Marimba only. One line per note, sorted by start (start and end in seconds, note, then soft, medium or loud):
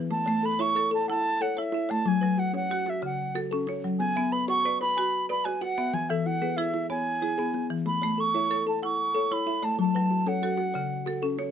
0.00 0.27 E3 medium
0.00 0.27 G#4 medium
0.28 0.60 A3 medium
0.60 1.09 E5 medium
0.76 1.09 A4 medium
0.76 1.25 C#5 medium
1.10 1.42 E4 medium
1.42 1.90 C#5 medium
1.58 1.90 E4 medium
1.74 2.23 E5 medium
1.91 2.23 A3 medium
2.23 2.55 F#3 medium
2.54 3.03 C#5 medium
2.71 3.04 F#4 medium
3.03 3.35 C#3 medium
3.36 3.84 A4 medium
3.53 3.85 C#4 medium
3.69 4.17 C#5 medium
3.84 4.17 F#3 medium
4.17 4.49 B3 medium
4.50 4.98 F#5 medium
4.65 4.97 B4 medium
4.65 5.14 D5 medium
4.98 5.30 F#4 medium
5.29 5.78 D5 medium
5.45 5.78 F#4 medium
5.61 6.10 F#5 medium
5.78 6.10 B3 medium
6.10 6.42 E3 medium
6.42 6.90 B4 medium
6.58 6.90 E4 medium
6.58 7.06 G#4 medium
6.90 7.22 B3 medium
7.22 7.71 G#4 medium
7.39 7.71 B3 medium
7.70 8.02 E3 medium
8.03 8.35 A3 medium
8.36 8.83 E5 medium
8.51 8.83 A4 medium
8.51 8.99 C#5 medium
8.83 9.15 E4 medium
9.16 9.63 C#5 medium
9.32 9.63 E4 medium
9.47 9.95 E5 medium
9.63 9.95 A3 medium
9.96 10.27 F#3 medium
10.27 10.75 C#5 medium
10.43 10.75 F#4 medium
10.43 10.91 A4 medium
10.75 11.07 C#3 medium
11.07 11.51 A4 medium
11.23 11.51 C#4 medium
11.39 11.51 C#5 medium